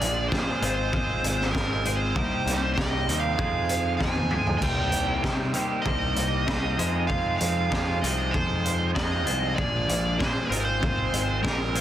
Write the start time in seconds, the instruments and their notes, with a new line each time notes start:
Already playing: clean electric guitar A#2 F3 G#3 D4 G#4, overdriven electric guitar D3 A#3, lead electric guitar D5
0.01 picked electric bass A#1, closed hi-hat
0.28 picked electric bass A#1, clean electric guitar A#2 F3 G#3, overdriven electric guitar D3, lead electric guitar C5, kick
0.33 overdriven electric guitar A#3, clean electric guitar D4 G#4, snare
0.61 picked electric bass G#1, clean electric guitar G#3 C4 F4 C5 D#5, overdriven electric guitar G#4, closed hi-hat
0.75 lead electric guitar C5
0.92 clean electric guitar G#3 C4 F4 C5 D#5, overdriven electric guitar G#4, kick
1.23 picked electric bass G#1, closed hi-hat
1.41 snare
1.51 picked electric bass G#1, clean electric guitar G#3 C4 F4 C5, lead electric guitar A#4, kick
1.55 overdriven electric guitar G#4, clean electric guitar D#5, snare
1.85 clean electric guitar G#3 C4 F4 C5 D#5, overdriven electric guitar G#4, closed hi-hat
1.97 lead electric guitar C5
2.14 clean electric guitar C3 G3 A#3 D#4 G4 D#5, overdriven electric guitar D#3 C4, kick
2.45 picked electric bass C2, snare, closed hi-hat
2.74 clean electric guitar C3 G3 A#3, lead electric guitar D#5
2.78 picked electric bass C2, overdriven electric guitar D#3 C4, clean electric guitar D#4 G4 D#5, kick, snare
3.07 picked electric bass D#2, clean electric guitar C3 G3 A#3 D#4 G4 D#5, overdriven electric guitar D#3 C4, closed hi-hat
3.20 lead electric guitar F5
3.34 clean electric guitar F3 C4, lead electric guitar F5
3.38 overdriven electric guitar F2 C3 G#3, picked electric bass F2, clean electric guitar D#4 G#4 C5, kick
3.69 closed hi-hat
3.97 overdriven electric guitar F2 C3, picked electric bass F2, clean electric guitar F3 C4 D#4 G#4, lead electric guitar G#5, kick
4.01 overdriven electric guitar G#3, clean electric guitar C5, snare
4.15 high tom
4.30 picked electric bass D2, overdriven electric guitar F2 C3 G#3, clean electric guitar F3 C4 D#4 G#4 C5, mid tom
4.47 floor tom
4.58 picked electric bass C2, clean electric guitar C3, overdriven electric guitar D#3, lead electric guitar G5, kick, crash
4.62 clean electric guitar G3 A#3 D#4 G4 C5, overdriven electric guitar C4
4.92 picked electric bass C2, closed hi-hat
5.22 clean electric guitar C3 G3 A#3 D#4 G4 C5, picked electric bass C3, overdriven electric guitar D#3 C4, kick, snare
5.54 clean electric guitar C3 G3 A#3 D#4 G4 C5, overdriven electric guitar D#3 C4, closed hi-hat
5.82 picked electric bass C2, clean electric guitar C3 G3 A#3, overdriven electric guitar D#3 C4, lead electric guitar D#5, kick
5.86 clean electric guitar D#4 G4 C5
6.16 picked electric bass C2, closed hi-hat
6.46 picked electric bass C2, clean electric guitar C3 G3 A#3 D#4 G4 C5, overdriven electric guitar D#3 C4, kick, snare
6.77 overdriven electric guitar F2 C3 C4 G#4, picked electric bass F2, clean electric guitar F3 G#3 D#4 F4 C5, closed hi-hat
7.07 overdriven electric guitar F2 C3, clean electric guitar F3 G#3 D#4 F4, lead electric guitar F5, kick
7.11 overdriven electric guitar C4 G#4, clean electric guitar C5
7.37 picked electric bass F2, lead electric guitar F5, closed hi-hat
7.71 overdriven electric guitar F2 C3 C4 G#4, clean electric guitar F3 G#3 D#4 F4 C5, kick, snare
8.01 picked electric bass C2, overdriven electric guitar F2 C3, clean electric guitar F3 G#3 D#4 F4 C5, lead electric guitar D#5, closed hi-hat
8.05 overdriven electric guitar C4 G#4
8.31 overdriven electric guitar F2 C3, picked electric bass F2, clean electric guitar F3 G#3 D#4 F4, lead electric guitar C5, kick
8.35 overdriven electric guitar C4 G#4, clean electric guitar C5
8.65 closed hi-hat
8.94 picked electric bass F2, overdriven electric guitar F2 C3, clean electric guitar F3 G#3 D#4 F4 C5, lead electric guitar D#5, kick, snare
8.99 overdriven electric guitar C4 G#4
9.25 picked electric bass C2, overdriven electric guitar F2 C3, clean electric guitar F3 G#3 D#4 F4 C5, closed hi-hat
9.30 overdriven electric guitar C4 G#4
9.56 picked electric bass A#1, clean electric guitar A#2 F3 G#3 D4 G#4, overdriven electric guitar D3 A#3, lead electric guitar D5, kick
9.89 picked electric bass A#1, closed hi-hat
10.18 clean electric guitar A#2 F3 G#3 D4 G#4, picked electric bass A#2, overdriven electric guitar D3 A#3, lead electric guitar C5, kick, snare
10.49 picked electric bass G#1, clean electric guitar G#3 C4 F4 C5 D#5, overdriven electric guitar G#4, closed hi-hat
10.60 lead electric guitar A#4
10.65 lead electric guitar C5
10.81 clean electric guitar G#3 C4 F4 C5 D#5, overdriven electric guitar G#4, kick
11.12 picked electric bass G#1, closed hi-hat
11.42 picked electric bass A#1, clean electric guitar G#3 C4 F4 C5 D#5, overdriven electric guitar G#4, lead electric guitar A#4, kick, snare
11.75 clean electric guitar G#3 C4 F4 C5 D#5, overdriven electric guitar G#4, closed hi-hat